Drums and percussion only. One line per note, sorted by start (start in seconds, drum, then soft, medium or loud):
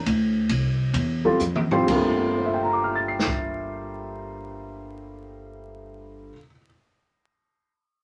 0.06 ride medium
0.49 ride medium
0.94 ride soft
1.40 hi-hat pedal medium
1.55 mid tom medium
1.71 floor tom medium
1.88 kick medium
1.88 crash medium
3.19 snare soft
3.27 kick medium